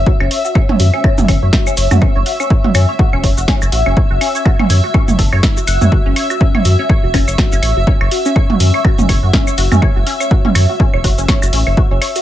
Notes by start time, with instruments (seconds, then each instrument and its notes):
Already playing: ambient pad E5
0.06 synth pluck F#4, kick
0.20 analog synth bass F#1, synth pluck C#4, claves, high woodblock
0.31 synth pluck C#5, open hi-hat
0.45 synth pluck F#4, shaker
0.55 synth pluck C#4, kick, claves
0.69 synth pluck C#5, mid tom
0.80 analog synth bass F#2, synth pluck F#4, open hi-hat, shaker
0.94 synth pluck C#4, claves
1.04 synth pluck C#5, kick, high woodblock
1.18 analog synth bass F#1, synth pluck F#4, mid tom, shaker
1.28 analog synth bass F#1, synth pluck C#4, kick, open hi-hat, claves
1.42 analog synth bass F#2, synth pluck C#5
1.53 synth pluck F#4, kick, snare
1.67 synth pluck C#4, claves, shaker
1.77 analog synth bass F#1, synth pluck C#5, open hi-hat, shaker
1.91 analog synth bass F#2, synth pluck F#4, mid tom, high woodblock, shaker
2.02 synth pluck C#4, kick, claves
2.15 analog synth bass F#1, synth pluck C#5
2.26 synth pluck F#4, open hi-hat
2.40 synth pluck C#4, claves, shaker
2.50 synth pluck C#5, kick
2.64 synth pluck F#4, mid tom
2.75 analog synth bass F#2, synth pluck C#4, open hi-hat, claves, high woodblock, shaker
2.89 synth pluck C#5
2.99 synth pluck F#4, kick
3.13 analog synth bass E1, synth pluck C#4, claves
3.23 analog synth bass F#1, synth pluck C#5, kick, open hi-hat
3.37 analog synth bass F#1, synth pluck F#4, shaker
3.48 synth pluck C#4, kick, snare, claves
3.62 analog synth bass F#1, synth pluck C#5, high woodblock, shaker
3.72 analog synth bass A1, synth pluck F#4, open hi-hat
3.86 analog synth bass F#1, synth pluck C#4, claves
3.96 synth pluck C#5, kick
4.11 analog synth bass F#1, synth pluck F#4
4.21 synth pluck C#4, open hi-hat, claves
4.35 synth pluck C#5, shaker
4.45 synth pluck F#4, kick, high woodblock
4.59 synth pluck C#4, mid tom, claves
4.70 analog synth bass F#2, synth pluck C#5, open hi-hat, shaker
4.84 synth pluck F#4
4.94 synth pluck C#4, kick, claves
5.08 analog synth bass F#1, synth pluck C#5, mid tom, shaker
5.18 analog synth bass F#1, synth pluck A4, kick, open hi-hat
5.33 analog synth bass F#2, synth pluck C#5, claves, high woodblock
5.43 synth pluck E4, kick, snare
5.57 synth pluck F#4, shaker
5.67 analog synth bass F#1, synth pluck F#5, open hi-hat, claves, shaker
5.81 analog synth bass F#2, synth pluck C#5, mid tom, shaker
5.92 synth pluck F#4, kick
6.06 analog synth bass F#1, synth pluck C#4
6.16 synth pluck C#5, open hi-hat, claves
6.30 synth pluck F#4, high woodblock, shaker
6.41 synth pluck C#4, kick
6.55 synth pluck C#5, mid tom, claves
6.65 analog synth bass F#2, synth pluck F#4, open hi-hat, shaker
6.79 synth pluck C#4
6.89 synth pluck C#5, kick, claves
7.03 analog synth bass E1, synth pluck F#4
7.14 analog synth bass F#1, synth pluck C#4, kick, open hi-hat, high woodblock
7.28 analog synth bass F#1, synth pluck C#5, claves, shaker
7.38 synth pluck F#4, kick, snare
7.52 analog synth bass F#1, synth pluck C#4, shaker
7.62 analog synth bass A1, synth pluck C#5, open hi-hat, claves
7.77 analog synth bass F#1, synth pluck F#4
7.87 synth pluck C#4, kick
8.01 analog synth bass F#1, synth pluck C#5, claves, high woodblock
8.11 synth pluck F#4, open hi-hat
8.25 synth pluck C#4, shaker
8.36 synth pluck C#5, kick, claves
8.50 synth pluck F#4, mid tom
8.60 analog synth bass F#2, synth pluck C#4, open hi-hat, shaker
8.74 synth pluck C#5, claves
8.85 synth pluck F#4, kick, high woodblock
8.99 analog synth bass F#1, synth pluck C#4, mid tom, shaker
9.09 analog synth bass F#1, synth pluck C#5, kick, open hi-hat, claves
9.23 analog synth bass F#2, synth pluck F#4
9.33 synth pluck C#4, kick, snare
9.47 synth pluck C#5, claves, shaker
9.58 analog synth bass F#1, synth pluck F#4, open hi-hat, shaker
9.72 analog synth bass F#2, synth pluck C#4, mid tom, high woodblock, shaker
9.82 synth pluck C#5, kick, claves
9.96 analog synth bass F#1, synth pluck F#4
10.06 synth pluck C#4, open hi-hat
10.20 synth pluck C#5, claves, shaker
10.31 synth pluck F#4, kick
10.45 synth pluck C#4, mid tom
10.55 analog synth bass F#2, synth pluck C#5, open hi-hat, claves, high woodblock, shaker
10.69 synth pluck F#4
10.80 synth pluck C#4, kick
10.94 analog synth bass E1, synth pluck C#5, claves
11.04 analog synth bass F#1, synth pluck F#4, kick, open hi-hat
11.18 analog synth bass F#1, synth pluck C#4, shaker
11.28 synth pluck C#5, kick, snare, claves
11.42 analog synth bass F#1, synth pluck F#4, high woodblock, shaker
11.53 analog synth bass A1, synth pluck C#4, open hi-hat
11.67 analog synth bass F#1, synth pluck C#5, claves
11.77 synth pluck F#4, kick
11.91 analog synth bass F#1, synth pluck C#4
12.02 synth pluck C#5, open hi-hat, claves
12.16 synth pluck F#4, open hi-hat, shaker